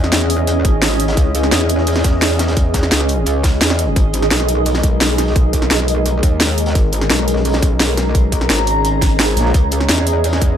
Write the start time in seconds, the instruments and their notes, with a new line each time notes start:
Already playing: wobble bass E2, analog synth pad C#4 G#4 D#5, ambient pad C#4 E4 G#4
0.04 snare
0.12 wobble bass E2, snare, closed hi-hat
0.21 snare
0.30 closed hi-hat, open hi-hat
0.47 closed hi-hat
0.65 wobble bass G#1, kick, closed hi-hat
0.82 snare, closed hi-hat
1.00 closed hi-hat
1.08 snare, closed hi-hat
1.17 wobble bass C#2, kick, closed hi-hat
1.35 closed hi-hat
1.43 snare
1.52 wobble bass E2, snare, closed hi-hat
1.61 snare
1.69 closed hi-hat
1.78 snare
1.87 closed hi-hat, open hi-hat
1.96 snare
2.04 wobble bass E2, kick, snare, closed hi-hat
2.11 ambient pad D#5
2.21 snare, closed hi-hat
2.31 snare
2.39 snare, closed hi-hat
2.48 snare, closed hi-hat
2.57 kick, closed hi-hat
2.74 kick, snare, closed hi-hat
2.83 snare
2.92 wobble bass C#2, snare, closed hi-hat
3.00 snare
3.08 closed hi-hat, open hi-hat
3.26 wobble bass C#2, closed hi-hat
3.44 kick, snare, closed hi-hat
3.61 wobble bass E2, snare, closed hi-hat
3.70 snare, closed hi-hat
3.79 closed hi-hat
3.96 wobble bass G#1, analog synth pad G#3 D#4 A#4, kick, closed hi-hat
4.13 closed hi-hat
4.22 snare
4.31 wobble bass B1, snare, closed hi-hat
4.40 snare
4.49 closed hi-hat
4.65 closed hi-hat, open hi-hat
4.74 snare
4.83 wobble bass B1, kick, closed hi-hat
5.01 snare, closed hi-hat
5.18 snare, closed hi-hat, open hi-hat
5.27 snare
5.36 kick, closed hi-hat
5.53 kick, closed hi-hat
5.62 snare
5.70 wobble bass B1, snare, closed hi-hat
5.79 snare
5.88 closed hi-hat, open hi-hat
6.06 closed hi-hat
6.23 wobble bass D#2, kick, closed hi-hat
6.40 snare, closed hi-hat
6.58 closed hi-hat
6.66 snare, closed hi-hat
6.75 wobble bass G#1, analog synth pad C#4, ambient pad A#5, kick, closed hi-hat
6.92 closed hi-hat
7.01 snare
7.10 wobble bass B1, snare, closed hi-hat
7.19 snare
7.28 closed hi-hat
7.36 snare
7.45 closed hi-hat, open hi-hat
7.53 snare
7.62 wobble bass B1, kick, closed hi-hat
7.80 snare, closed hi-hat
7.97 snare, closed hi-hat
8.15 kick, closed hi-hat
8.32 kick, closed hi-hat
8.41 snare
8.49 wobble bass G#1, snare, closed hi-hat
8.59 snare
8.67 closed hi-hat, open hi-hat
8.85 closed hi-hat
9.02 kick, snare, closed hi-hat
9.20 snare, closed hi-hat
9.37 fm bass A#1, snare, closed hi-hat
9.46 snare
9.54 wobble bass C#2, ambient pad C#4, analog synth pad G#4 D#5, kick, closed hi-hat
9.71 ambient pad E4, closed hi-hat
9.80 snare
9.89 wobble bass E2, snare, closed hi-hat
9.98 snare
10.07 closed hi-hat
10.24 closed hi-hat, open hi-hat
10.33 snare
10.41 wobble bass E2, kick, closed hi-hat